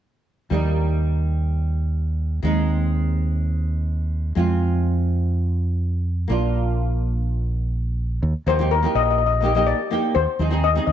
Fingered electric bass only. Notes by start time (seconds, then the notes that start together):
0.51 D#2
2.43 D#2
4.36 F2
6.30 A#1
8.23 D#2
8.46 D#2
8.95 A#1
10.16 D#2
10.39 D#2
10.87 D#2